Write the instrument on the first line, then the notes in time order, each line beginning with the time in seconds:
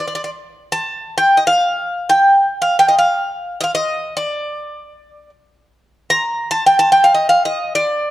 bouzouki
0.08 D5
0.15 D5
0.24 D5
0.72 A5
1.18 G5
1.37 D#5
1.47 F5
2.09 G5
2.62 F5
2.79 G5
2.88 D#5
2.99 F5
3.61 D#5 F5
3.75 D#5
4.17 D5
6.10 A#5
6.51 A5
6.66 G5
6.79 A5
6.92 G5
7.04 F5
7.14 D#5
7.29 F5
7.45 D#5
7.75 D5